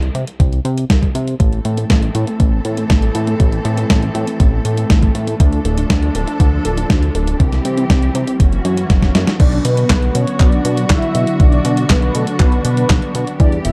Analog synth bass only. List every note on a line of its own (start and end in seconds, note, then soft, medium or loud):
0.15 0.25 C3 loud
0.40 0.60 C2 medium
0.65 0.85 C3 medium
0.90 1.10 C2 medium
1.15 1.35 C3 medium
1.40 1.60 A1 loud
1.65 1.85 A2 medium
1.90 2.10 A1 loud
2.15 2.25 A2 medium
2.40 2.60 A1 medium
2.65 2.85 A2 medium
2.90 3.10 A1 medium
3.15 3.35 A2 medium
3.40 3.60 A1 loud
3.65 3.85 A2 medium
3.90 4.10 A1 loud
4.15 4.25 A2 medium
4.40 4.60 A1 medium
4.65 4.85 A2 medium
4.90 5.10 A1 medium
5.15 5.35 A2 medium
5.40 5.60 D2 loud
5.65 5.85 D1 medium
5.90 6.10 D2 loud
6.15 6.25 D1 medium
6.40 6.60 D2 medium
6.65 6.85 D1 medium
6.90 7.10 D2 medium
7.15 7.35 D1 medium
7.40 7.60 C2 loud
7.65 7.85 C3 medium
7.90 8.10 C2 loud
8.15 8.25 C3 medium
8.40 8.60 F#1 medium
8.65 8.85 F#2 medium
8.90 9.10 F#1 loud
9.15 9.25 F#2 medium
9.40 9.60 B1 loud
9.65 9.85 B2 loud
9.90 10.10 B1 loud
10.15 10.25 B2 loud
10.40 10.60 B1 loud
10.65 10.85 B2 medium
10.90 11.00 B1 medium
11.15 11.25 B2 medium
11.40 11.60 B1 loud
11.65 11.85 B2 medium
11.90 12.10 B1 loud
12.15 12.25 B2 medium
12.40 12.60 B1 loud
12.65 12.85 B2 medium
12.90 13.00 B1 medium
13.15 13.25 B2 medium
13.40 13.60 E2 loud
13.65 13.72 E1 medium